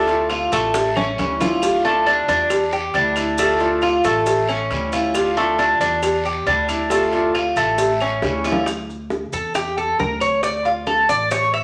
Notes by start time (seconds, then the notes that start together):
Already playing: D2 A3
0.07 A3 D4 F4, cowbell, maracas
0.29 D3 A3 D4 F4, cowbell, short guiro, claves, maracas
0.52 A1 A3, cowbell, short guiro, maracas
0.74 muted steel-string acoustic guitar stroke, cowbell, high bongo, long guiro, maracas
0.96 C#4, low bongo, claves, maracas
1.18 D2 E3 G3 C#4 E4, cowbell, low bongo, short guiro, maracas
1.40 G3 C#4 E4 F4, cowbell, low bongo, short guiro, maracas
1.62 D3 A3 D4 F4, cowbell, long guiro, claves, maracas
1.84 A3 D4 F4, maracas
2.06 D3 A3 D4 F4, cowbell, short guiro, maracas
2.28 E2 D4, cowbell, short guiro, maracas
2.50 muted steel-string acoustic guitar stroke, cowbell, long guiro, claves, maracas
2.72 G4, maracas
2.94 D2 D3 G3 D4 E4, cowbell, short guiro, maracas
3.16 G3 D4 E4, cowbell, short guiro, claves, maracas
3.38 D3 A3 D4 F4, cowbell, long guiro, maracas
3.60 A3 D4 F4, cowbell, maracas
3.81 D3 A3 D4 F4, cowbell, short guiro, claves, maracas
4.04 A1 A3, cowbell, short guiro, maracas
4.26 muted steel-string acoustic guitar stroke, cowbell, long guiro, maracas
4.49 C#4, claves, maracas
4.70 D2 E3 G3 C#4 E4, cowbell, short guiro, maracas
4.92 G3 C#4 E4 F4, cowbell, short guiro, maracas
5.14 D3 A3 D4 F4, cowbell, long guiro, claves, maracas
5.37 A3 D4 F4, maracas
5.58 D3 A3 D4 F4, cowbell, short guiro, maracas
5.80 E2 D4, cowbell, short guiro, maracas
6.03 muted steel-string acoustic guitar stroke, cowbell, long guiro, claves, maracas
6.25 G4, maracas
6.46 D2 D3 G3 D4 E4, cowbell, short guiro, maracas
6.68 G3 D4 E4, cowbell, short guiro, claves, maracas
6.90 D3 A3 D4 F4, cowbell, long guiro, maracas
7.12 A3 D4 F4, cowbell, maracas
7.35 D3 A3 D4 F4, cowbell, short guiro, claves, maracas
7.56 A1 A3, cowbell, short guiro, maracas
7.78 muted steel-string acoustic guitar stroke, cowbell, long guiro, maracas
8.00 C#4, claves, maracas
8.22 D2 E3 G3 C#4 E4, cowbell, high bongo, short guiro, maracas
8.44 G3 C#4 E4 F4, cowbell, short guiro, maracas
8.52 low bongo
8.66 high bongo, claves, maracas
8.90 high bongo, maracas
9.10 high bongo, maracas
9.32 E2 A4, high bongo, maracas
9.55 G4, high bongo, claves, maracas
9.78 A4, maracas
9.99 D2 A#4, high bongo, low bongo, maracas
10.20 C#5, high bongo, claves, maracas
10.43 D5, high bongo, maracas
10.65 F4, high bongo, maracas
10.86 A4, high bongo, claves, maracas
11.09 A1 D5, high bongo, maracas
11.31 C#5, high bongo, maracas
11.53 E5, claves, maracas